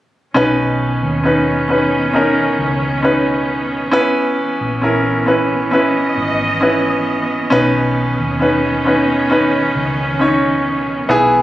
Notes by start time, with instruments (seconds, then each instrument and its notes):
0.34 fingered electric bass B1, grand piano B2 C#4 D#4 B4, string section D#3 B3 C#4
1.03 fingered electric bass D#2
1.24 grand piano C#4 D#4 B4
1.68 grand piano C#4 D#4 B4
2.13 grand piano C#4 D#4 A#4
2.59 fingered electric bass C#2
3.03 grand piano C#4 D#4 B4
3.91 fingered electric bass B1, string section E3, grand piano B3 C#4 E4 B4
4.61 fingered electric bass A#1
4.81 grand piano C#4 E4 A#4
5.26 grand piano C#4 E4 B4
5.71 grand piano C#4 E4 B4, string section D#5
6.17 fingered electric bass G#1
6.61 grand piano C#4 E4 B4
7.50 fingered electric bass B1, grand piano B2 C#4 D#4 B4, string section D#3 C#4
8.19 fingered electric bass D#2
8.40 grand piano C#4 D#4 B4
8.85 grand piano C#4 D#4 B4
9.30 grand piano C#4 D#4 B4
9.75 fingered electric bass C#2
10.19 grand piano C#4 D#4 C#5
11.09 fingered electric bass B1, string section E3 G#3, grand piano B3 E4 G#4